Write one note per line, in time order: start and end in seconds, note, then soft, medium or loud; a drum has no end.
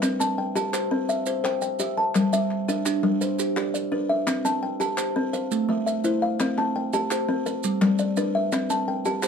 0.00 0.38 C4 medium
0.00 0.20 E5 medium
0.00 0.38 E5 medium
0.00 clap medium
0.00 maracas medium
0.20 0.56 C4 medium
0.20 0.73 A5 medium
0.20 clap soft
0.20 maracas medium
0.38 0.91 G5 medium
0.56 0.91 G4 medium
0.56 1.09 A5 medium
0.56 maracas medium
0.73 1.09 G4 medium
0.73 1.26 C5 medium
0.73 clap medium
0.73 maracas loud
0.91 1.27 C4 medium
1.09 1.62 E5 medium
1.09 1.62 F5 medium
1.09 maracas medium
1.26 1.62 C5 medium
1.26 maracas loud
1.44 1.79 C5 medium
1.44 1.98 G5 medium
1.44 clap medium
1.62 2.15 G5 medium
1.62 maracas medium
1.79 2.15 G4 medium
1.79 2.15 E5 medium
1.79 maracas medium
1.97 2.33 A5 medium
1.97 2.51 A5 medium
2.15 2.50 G3 medium
2.15 clap soft
2.15 maracas medium
2.33 2.68 G3 medium
2.33 2.86 E5 medium
2.33 maracas medium
2.51 clap soft
2.68 3.04 D4 medium
2.68 3.22 E5 medium
2.68 maracas medium
2.86 3.21 D4 medium
2.86 3.38 G4 medium
2.86 clap medium
2.86 maracas loud
3.03 3.39 G3 medium
3.03 clap soft
3.21 3.74 B4 medium
3.21 3.75 C5 medium
3.21 maracas medium
3.39 3.75 G4 medium
3.39 clap soft
3.39 maracas medium
3.56 3.92 G4 medium
3.56 4.10 D5 medium
3.56 clap medium
3.74 4.27 D5 medium
3.74 maracas medium
3.92 4.27 D4 medium
3.92 4.28 B4 medium
4.09 4.45 E5 medium
4.09 4.63 E5 medium
4.27 4.63 C4 medium
4.27 clap medium
4.27 maracas medium
4.45 4.80 C4 medium
4.45 4.98 A5 medium
4.45 clap soft
4.45 maracas medium
4.63 5.16 G5 medium
4.80 5.16 G4 medium
4.80 5.34 A5 medium
4.80 maracas medium
4.98 5.33 G4 medium
4.98 5.51 C5 medium
4.98 clap medium
4.98 maracas medium
5.16 5.34 C4 medium
5.33 5.87 C5 medium
5.33 5.69 F5 medium
5.33 maracas medium
5.52 5.87 A3 medium
5.52 maracas medium
5.69 6.04 A3 medium
5.69 6.22 E5 medium
5.86 6.40 E5 medium
5.86 maracas medium
6.04 6.40 E4 medium
6.04 6.40 C5 medium
6.04 maracas medium
6.22 6.58 F5 medium
6.22 6.76 F5 medium
6.40 6.75 C4 medium
6.40 clap medium
6.40 maracas medium
6.58 6.93 C4 medium
6.58 7.11 A5 medium
6.58 clap soft
6.76 7.29 G5 medium
6.93 7.29 G4 medium
6.93 7.46 A5 medium
6.93 maracas medium
7.11 7.47 G4 medium
7.11 7.64 C5 medium
7.11 clap medium
7.11 maracas medium
7.29 7.46 C4 medium
7.46 7.99 B4 medium
7.46 maracas medium
7.64 8.00 G3 medium
7.64 maracas medium
7.81 8.17 G3 medium
7.81 8.35 D5 medium
7.81 clap medium
7.99 8.52 D5 medium
7.99 maracas medium
8.17 8.53 D4 medium
8.17 8.53 B4 medium
8.17 maracas medium
8.35 8.70 E5 medium
8.35 8.88 E5 medium
8.52 8.88 C4 medium
8.52 clap medium
8.52 maracas medium
8.70 9.05 C4 medium
8.70 9.23 A5 medium
8.70 clap soft
8.70 maracas medium
8.88 9.28 G5 medium
9.05 9.28 G4 loud
9.05 9.28 A5 medium
9.05 maracas medium
9.23 9.28 G4 medium
9.23 9.28 C5 medium
9.23 clap medium
9.23 maracas medium